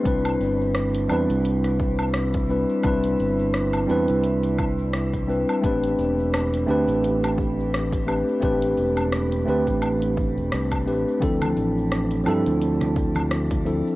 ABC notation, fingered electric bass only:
X:1
M:4/4
L:1/16
Q:"Swing 16ths" 1/4=86
K:C
V:1 name="Fingered electric bass" clef=bass
C,,2 G,,,4 E,, C,,8 z | C,,2 G,,,4 E,, C,,8 z | A,,,2 E,,,4 D,, A,,,8 z | A,,,2 E,,,4 D,, A,,,4 E,,, C,,2 A,,, z |
D,,2 A,,,4 G,, D,,8 z |]